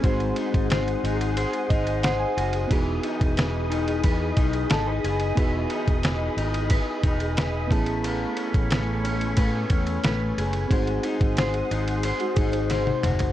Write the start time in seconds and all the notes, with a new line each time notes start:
Already playing: C#4 G#4
0.01 G#1 G#3 C4 D#4 F#4 G#4 C5 F#5 C6 D#6, kick, ride
0.06 G#4
0.20 ride
0.36 D#4, ride
0.54 G#1, kick, ride
0.70 C5, snare, ride
0.88 ride
1.04 G#1 D#4, ride
1.21 ride
1.37 C5, ride
1.53 ride
1.70 G#1 D#4 D#5, kick, ride
1.87 ride
2.03 C5 F#5, snare, ride
2.20 G#5
2.37 F#1 F#4, ride
2.53 ride
2.67 E1 B3 D#4 F#4 D#5 B5, kick, ride
2.71 E3 G#4 B4
3.03 D#4, ride
3.21 E1, kick, ride
3.37 B4, snare, ride
3.70 D#4, ride
3.88 ride
4.04 E2 B4, kick, ride
4.37 B1 D#4, kick, ride
4.53 ride
4.70 G#1 A4, snare, ride
4.87 B4
5.04 F#1 G#4, ride
5.19 ride
5.35 E1 E3 B3 D#4 F#4 B4, kick, ride
5.40 G#4
5.70 D#4, ride
5.88 E1, kick, ride
6.03 B4, snare, ride
6.37 G#1 D#4, ride
6.54 ride
6.70 B4, kick, ride
7.04 E1 D#4, kick, ride
7.20 ride
7.37 B4, snare, ride
7.68 A1 A3 B3 C#4 E4 G#5 C#6, kick
7.72 G#4, ride
7.86 ride
8.04 A3 B4, ride
8.37 C#4, ride
8.54 A1, kick, ride
8.71 B4, snare, ride
9.04 C#4, ride
9.21 ride
9.37 A2 B4, kick, ride
9.70 E2 C#4, kick, ride
9.87 ride
10.03 A1 B4, snare, ride
10.38 F#1 G#4, ride
10.53 ride
10.68 G#1 G#3 C4 D#4 F#4 G#4 C5 F#5 C6 D#6, kick, ride
10.73 G#4
10.87 ride
11.03 D#4, ride
11.21 G#1, kick, ride
11.37 C5, snare, ride
11.54 ride
11.71 G#1 D#4, ride
11.88 ride
12.03 C5, ride
12.20 F#4, ride
12.36 G#1 D#4 G#4, kick, ride
12.52 C5, ride
12.70 C5, snare, ride
12.87 high tom
13.03 F#1 F#4, mid tom, ride
13.19 floor tom, ride